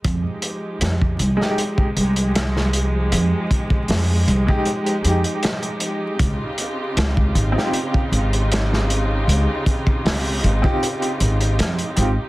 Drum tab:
HH |x-x-x-x-x-xxx-x-|x-x-o-x-xxxxxxx-|x-x-x-x-x-xxx-x-|x-x-o-x-xxxxxxx-|
SD |----o--o----oo--|----o-------o---|----o--o----oo--|----o-------o---|
BD |o----o---o------|--oo---o--------|o----o---o------|--oo---o--------|